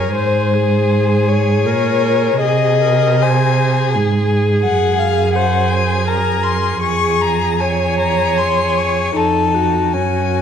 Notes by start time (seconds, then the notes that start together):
Already playing: F#2 G#4 A#4 C#5
0.15 G#2 G#4 C5
0.54 G#4
1.28 C#5
1.65 A#2 A#4
2.39 C3 G#4 D#5
2.81 A#4
3.22 G#4 C5 G#5
3.95 G#2 G#4
4.64 F#2 G#4 F#5
4.99 F5
5.34 G#4 C5 F#5
5.69 G#5
6.07 A#4 A#5
6.43 C6
6.82 F2 G#4 C#6
7.21 A#5
7.60 G#4 C#5 G#5
7.98 A#5
8.38 C6
8.77 C#6
9.16 F2 D#4 A4 A5
9.54 F#4
9.93 F#2 C#4 G#5